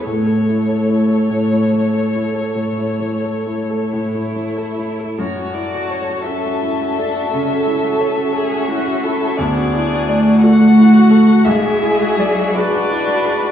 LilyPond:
<<
  \new Staff \with { instrumentName = "Violin" } { \time 12/8 \key a \major \tempo 4. = 56 cis''1~ cis''4.~ cis''16 r16 | \key fis \minor cis''8 d''8 cis''8 e''1~ e''8 | d''4. fis''4. e''4. d''4. | }
  \new Staff \with { instrumentName = "Violin" } { \time 12/8 \key a \major cis''1~ cis''4~ cis''16 r8. | \key fis \minor a'1~ a'8 gis'8 fis'8 a'8 | gis'4. fis'4. gis'4. b'4. | }
  \new Staff \with { instrumentName = "Grand piano" } { \time 12/8 \key a \major a,16 a'16 e'16 a'16 e'16 a'16 a,16 e'16 e16 a'16 e'16 a'16 a,16 e'16 e16 a'16 e'16 a'16 a,16 e'16 e16 a'16 e'16 a'16 | \key fis \minor fis,16 fis'16 e'16 fis'16 cis''16 fis'16 a'16 fis'16 e'16 fis'16 a'16 fis'16 cis16 fis'16 e'16 fis'16 cis''16 fis'16 a'16 fis'16 e'16 fis'16 a'16 fis'16 | d,16 fis'16 e'16 fis'16 d''16 fis'16 a'16 fis'16 e'16 fis'16 a'16 fis'16 b,,16 fis'16 e'16 fis'16 d''16 fis'16 gis'16 fis'16 e'16 fis'16 gis'16 fis'16 | }
  \new Staff \with { instrumentName = "Viola" } { \time 12/8 \key a \major a'1~ a'4.~ a'16 r16 | \key fis \minor r2. a'4. gis'8 fis'8 e'8 | d'4. fis'4. gis'4. fis'4. | }
  \new Staff \with { instrumentName = "Cello" } { \time 12/8 \key a \major a1~ a8 e'4. | \key fis \minor fis'4. cis'4 d'8 cis'4 cis'2 | b4 a2 gis4 fis8 d'4. | }
>>